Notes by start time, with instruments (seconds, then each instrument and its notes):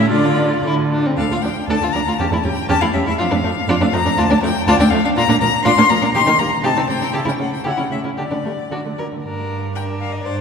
Already playing: violin C#4
0.10 cello D3, violin D4 D5, viola F4
0.25 violin F4
0.39 violin D4
0.52 violin F4
0.64 cello D3, violin E4
0.92 violin D4
1.06 violin C4
1.17 cello D2, viola D4, violin A4 F5
1.30 cello D2, viola A3, violin F4
1.42 cello D2, viola F3, violin D4 G5
1.68 cello D2, viola D4, violin A4 A5
1.81 cello D2, viola A3, violin F4
1.93 cello D2, viola F3, violin D4 A#5
2.06 cello D2, viola A3, violin F4
2.18 cello E2, viola C#4, violin G4 A5
2.32 cello E2, viola A3, violin E4
2.44 cello E2, viola G3, violin C#4 G5
2.68 cello E2, viola C#4, violin G4 A5
2.81 cello E2, viola A3, violin E4 F5
2.93 cello E2, viola G3, violin C#4 E5
3.06 cello E2, viola A3, violin E4 E5
3.18 cello F2, viola D4, violin F4 F5
3.31 cello F2, viola A3, violin D4
3.43 cello F2, viola F3, violin A3
3.68 cello F2, viola D4, violin F4
3.80 cello F2, viola A3, violin D4
3.93 cello F2, viola F3, violin A3 A#5
4.05 cello F2, viola A3, violin D4
4.17 cello D2, viola D4, violin F4 A5
4.29 cello D2, viola A3, violin D4
4.42 cello D2, viola F3, violin A3 G5
4.67 cello D2, viola D4, violin F4 A5
4.79 cello D2, viola A3, violin D4 G5
4.90 cello D2, viola F3, violin A3 F5
5.04 cello D2, viola A3, violin D4 F5
5.16 cello A#2, viola D4, violin F4 A#5
5.28 cello A#2, viola A#3, violin D4
5.41 cello A#2, viola F3, violin A#3 A#5
5.65 cello A#2, viola D4, violin F4 C6
5.77 cello A#2, viola A#3, violin D4
5.90 cello A#2, viola F3, violin A#3 A#5
6.01 cello A#2, viola A#3, violin D4
6.14 cello D#3, viola D#4, violin G4 C6
6.26 cello D#3, viola A#3, violin D#4
6.39 cello D#3, viola G3, violin A#3 A#5
6.63 cello C3, viola D#4, violin G4 A5
6.76 cello C3, viola C4, violin D#4
6.89 cello C3, viola A3, violin C4 G5
7.01 cello C3, viola C4, violin D#4
7.13 cello C#3, viola E4, violin G4 A5
7.25 cello C#3, viola C#4, violin E4 G5
7.38 cello C#3, viola A3, violin C#4 F#5
7.54 violin G5
7.64 cello C#3, viola E4, violin G4 F#5
7.77 cello C#3, viola C#4, violin E4
7.91 cello C#3, viola A3, violin C#4 E5
8.04 cello C#3, viola C#4, violin E4
8.17 cello D3, viola D4, violin G4 D5
8.31 cello D3, viola A3, violin D4
8.44 cello D3, viola G3, violin A3
8.71 cello D3, viola D4, violin F#4
8.85 cello D3, viola A3
8.99 cello D3, viola F#3, violin A#4
9.13 cello D3, viola A3
9.24 cello G2, viola D4, violin A#4
9.75 viola D4, violin A#4 G5
10.01 violin F5
10.12 violin D#5
10.23 cello G2, viola D4, violin C5 D5